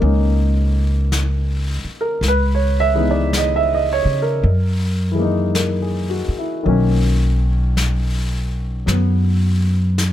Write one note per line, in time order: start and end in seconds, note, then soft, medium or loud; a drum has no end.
0.00 1.81 C#2 medium
0.00 2.21 F3 soft
0.00 2.22 G#3 soft
0.00 2.22 A#3 soft
0.00 2.23 C#4 soft
0.00 2.23 D#4 soft
0.00 2.01 A#4 medium
0.00 2.24 B4 medium
0.00 2.24 C#5 medium
0.00 2.24 D#5 medium
0.00 brush sweep soft
1.12 brush sweep soft
1.12 snare soft
1.12 hi-hat pedal soft
1.84 muted upright bass stroke soft
2.01 2.21 A#4 medium
2.21 4.01 C#2 medium
2.21 brush sweep soft
2.21 snare soft
2.28 2.61 B4 medium
2.55 2.92 C#5 medium
2.80 3.06 E5 medium
2.94 4.44 E3 soft
2.94 4.44 G#3 soft
2.94 4.44 B3 soft
2.94 4.45 D#4 medium
3.11 3.31 D5 medium
3.33 brush sweep soft
3.33 snare soft
3.33 hi-hat pedal soft
3.37 3.59 D#5 medium
3.56 3.69 E5 medium
3.74 4.07 D#5 medium
3.93 4.18 C#5 medium
4.05 4.41 C#3 medium
4.22 5.53 A#4 medium
4.43 6.24 F#2 medium
4.43 brush sweep soft
5.12 6.64 E3 soft
5.12 6.65 G#3 soft
5.19 6.65 A#3 soft
5.19 6.69 D#4 medium
5.55 6.06 A#4 soft
5.55 brush sweep soft
5.55 snare soft
5.55 hi-hat pedal soft
5.82 6.29 G#4 soft
6.10 6.45 F#4 soft
6.28 muted upright bass stroke soft
6.39 6.77 E4 soft
6.63 8.84 B1 medium
6.63 10.13 D#3 soft
6.63 8.85 F#3 soft
6.63 10.13 A#3 soft
6.63 brush sweep soft
6.68 10.13 C#4 medium
7.77 brush sweep soft
7.77 snare soft
7.77 hi-hat pedal soft
8.86 10.13 F#2 medium
8.86 10.13 F#3 soft
8.86 10.13 B3 soft
8.86 brush sweep soft
8.86 snare soft
9.98 brush sweep soft
9.98 snare soft
9.98 hi-hat pedal soft